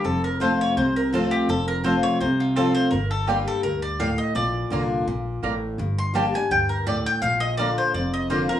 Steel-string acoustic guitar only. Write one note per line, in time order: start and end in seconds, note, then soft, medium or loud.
0.04 0.73 F2 medium
0.40 0.75 F3 medium
0.40 0.75 A3 medium
0.40 0.76 C4 medium
0.40 0.76 F4 medium
0.78 1.46 C3 loud
1.13 1.47 F3 medium
1.13 1.48 A3 loud
1.13 1.48 C4 loud
1.13 1.48 F4 loud
1.49 2.17 F2 medium
1.84 2.18 F3 loud
1.84 2.19 A3 medium
1.84 2.19 C4 medium
1.84 2.20 F4 medium
2.21 2.89 C3 medium
2.57 2.91 F3 medium
2.57 2.91 A3 medium
2.57 2.91 C4 loud
2.57 2.92 F4 loud
2.93 3.61 G2 medium
3.28 3.62 G3 medium
3.28 3.62 A#3 medium
3.28 3.63 D4 loud
3.28 3.63 G4 loud
3.64 3.98 G2 loud
4.00 4.34 A2 medium
4.35 5.04 A#2 medium
4.70 5.05 D3 medium
4.70 5.06 A#3 medium
4.70 5.06 D4 medium
4.70 5.06 F4 medium
5.08 5.42 A#2 medium
5.43 5.78 A2 medium
5.79 6.48 G2 medium
6.14 6.33 G3 medium
6.14 6.33 A#3 medium
6.14 6.34 D4 medium
6.14 6.33 G4 loud
6.34 6.51 D4 soft
6.34 6.50 G4 medium
6.51 6.85 G2 loud
6.87 7.21 A2 loud
7.23 7.91 A#2 medium
7.58 7.92 D3 medium
7.58 7.93 A#3 loud
7.58 7.93 D4 medium
7.58 7.94 F4 medium
7.95 8.60 F2 loud
8.30 8.48 D3 medium
8.30 8.49 A#3 medium
8.30 8.49 D4 medium
8.30 8.48 F4 loud
8.49 8.60 D4 soft
8.49 8.60 F4 medium